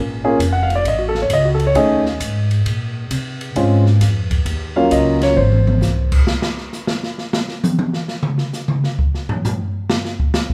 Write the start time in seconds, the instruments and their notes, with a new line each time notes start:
Already playing: upright bass A#1
0.24 grand piano A#3 C#4 F4 G#4
0.39 upright bass F1, kick, hi-hat pedal, ride
0.53 grand piano F#5
0.63 grand piano F5
0.70 ride
0.76 grand piano D5
0.85 upright bass A1, grand piano D#5, kick, ride
0.99 grand piano F#4
1.09 grand piano A4
1.15 snare
1.22 grand piano C#5
1.30 upright bass C#2, grand piano D#5, kick, hi-hat pedal, ride
1.45 grand piano F#4
1.54 grand piano A4
1.60 ride
1.67 grand piano C#5
1.74 upright bass D#2, grand piano A3 C#4 D#4 G#4 D#5, kick, ride
2.06 snare
2.20 upright bass G#2, kick, hi-hat pedal, ride
2.51 ride
2.66 upright bass A#2, kick, ride
3.11 upright bass C3, kick, hi-hat pedal, ride
3.41 ride
3.55 upright bass G#2, grand piano G#3 C4 C#4 F4, kick, ride
3.86 snare
4.01 upright bass F2, kick, snare, hi-hat pedal, ride
4.31 kick, ride
4.45 upright bass D#2, kick, ride
4.76 grand piano F#3 A#3 C#4 F4 F5
4.91 upright bass C#2, grand piano D#5, kick, hi-hat pedal, ride
5.21 grand piano C#5, snare, ride
5.36 upright bass G#1, grand piano C5, high tom
5.52 high tom
5.67 high tom
5.81 upright bass C2, snare, hi-hat pedal
6.12 kick, crash
6.27 snare
6.42 snare
6.57 snare
6.73 snare, hi-hat pedal
6.87 snare
7.03 snare
7.18 snare
7.33 snare
7.49 snare
7.64 hi-hat pedal, high tom
7.79 high tom
7.93 snare
8.08 snare
8.23 mid tom
8.38 snare
8.53 snare, hi-hat pedal
8.68 mid tom
8.84 snare
8.99 kick
9.15 snare
9.29 floor tom
9.45 floor tom, hi-hat pedal
9.90 snare
10.05 snare
10.20 kick
10.34 snare, hi-hat pedal
10.50 kick